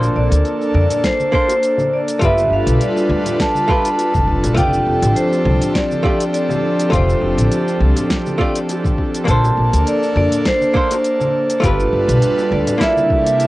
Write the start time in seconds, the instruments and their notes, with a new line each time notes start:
Already playing: hollow-body jazz guitar A#3 D4 A4 C5, analog synth pad A#3 D4 A4
0.01 high bongo, shaker
0.16 upright bass A#1, vibraphone D5
0.31 upright bass D2, closed hi-hat, high bongo, high conga, shaker
0.45 closed hi-hat, shaker
0.62 shaker
0.74 upright bass F2, vibraphone D5, high bongo, high conga
0.90 closed hi-hat, low conga, shaker
1.04 vibraphone C5, kick, snare, closed hi-hat, high bongo, shaker
1.20 high conga, shaker
1.32 hollow-body jazz guitar A#3 D4 A4 C5, vibraphone C5, kick
1.48 closed hi-hat, high bongo, shaker
1.63 closed hi-hat, shaker
1.78 high bongo, high conga, low conga, shaker
1.94 vibraphone D5
2.08 closed hi-hat, shaker
2.19 upright bass G1, analog synth pad G3 D4 F4 A4 B4, hollow-body jazz guitar A3 F4 G4, vibraphone E5, kick, closed hi-hat, high bongo, high conga, shaker
2.25 hollow-body jazz guitar B4
2.38 shaker
2.50 upright bass G1, vibraphone F5, high bongo
2.66 upright bass B1, closed hi-hat, high conga, shaker
2.81 vibraphone D5, closed hi-hat, shaker
2.96 high bongo, shaker
3.09 upright bass D2, high conga
3.25 closed hi-hat, high bongo, low conga, shaker
3.39 vibraphone A5, kick, snare, closed hi-hat, shaker
3.54 high conga, shaker
3.67 hollow-body jazz guitar A3 F4 G4 B4, kick, high bongo
3.85 closed hi-hat, shaker
3.98 closed hi-hat, high bongo, shaker
4.14 upright bass F1, kick, high conga, low conga, shaker
4.28 kick
4.43 upright bass B1, closed hi-hat, high bongo, shaker
4.54 upright bass F1, analog synth pad F3 C4 G4, hollow-body jazz guitar A3 F4 G4, vibraphone G5, kick, closed hi-hat, high bongo, high conga, shaker
4.60 hollow-body jazz guitar D5
4.73 shaker
4.86 upright bass F1
5.02 upright bass A1, closed hi-hat, high bongo, high conga, shaker
5.16 vibraphone C5, closed hi-hat, shaker
5.33 high bongo, shaker
5.45 upright bass C2, high conga
5.61 closed hi-hat, low conga, shaker
5.74 vibraphone D5, kick, snare, closed hi-hat, high bongo, shaker
5.91 high conga, shaker
6.03 hollow-body jazz guitar A3 F4 G4 D5, kick, high bongo
6.20 closed hi-hat, shaker
6.33 vibraphone D5, closed hi-hat, shaker
6.49 high bongo, high conga, low conga, shaker
6.79 closed hi-hat, high bongo, shaker
6.90 upright bass F1, hollow-body jazz guitar A3 F4 G4, vibraphone C5, kick, closed hi-hat, high conga, shaker
6.95 hollow-body jazz guitar D5
7.09 shaker
7.21 upright bass F1, high bongo
7.38 upright bass A1, closed hi-hat, high conga, shaker
7.52 closed hi-hat, high bongo, shaker
7.68 shaker
7.81 upright bass C2, high conga
7.96 closed hi-hat, high bongo, low conga, shaker
8.10 kick, snare, closed hi-hat, shaker
8.26 high bongo, high conga, shaker
8.38 hollow-body jazz guitar A3 F4 G4 D5, kick
8.56 closed hi-hat, shaker
8.69 closed hi-hat, high bongo, shaker
8.84 kick, high conga, low conga, shaker
8.98 kick, high bongo
9.15 closed hi-hat, shaker
9.25 upright bass A#1, hollow-body jazz guitar A#3 D4 A4, analog synth pad A#3 D4 A4, vibraphone A5, kick, closed hi-hat, high conga, shaker
9.30 hollow-body jazz guitar C5
9.44 high bongo, shaker
9.57 upright bass A#1
9.73 upright bass D2, closed hi-hat, high bongo, high conga, shaker
9.87 vibraphone D5, closed hi-hat, shaker
10.03 shaker
10.16 upright bass F2, vibraphone D5, high bongo, high conga
10.32 closed hi-hat, low conga, shaker
10.45 vibraphone C5, kick, snare, closed hi-hat, high bongo, shaker
10.61 high conga, shaker
10.74 hollow-body jazz guitar A#3 D4 A4 C5, kick
10.91 closed hi-hat, high bongo, shaker
11.04 closed hi-hat, shaker
11.20 high bongo, high conga, low conga, shaker
11.50 closed hi-hat, shaker
11.60 upright bass G1, analog synth pad G3 D4 F4 A4 B4, hollow-body jazz guitar A3 F4 G4, kick, closed hi-hat, high bongo, high conga, shaker
11.64 vibraphone B4, hollow-body jazz guitar B4
11.80 shaker
11.92 upright bass G1, high bongo
12.07 upright bass B1, closed hi-hat, high conga, shaker
12.22 vibraphone B4, closed hi-hat, shaker
12.38 high bongo, shaker
12.51 upright bass D2, vibraphone D5, high conga
12.67 closed hi-hat, high bongo, low conga, shaker
12.78 analog synth pad C3 G3 A#3 E4 A4, hollow-body jazz guitar A#3 E4 A4, vibraphone E5, kick, snare, closed hi-hat, shaker
12.83 hollow-body jazz guitar D5
12.96 high conga, shaker
13.10 kick, high bongo
13.26 closed hi-hat, shaker
13.40 closed hi-hat, high bongo, shaker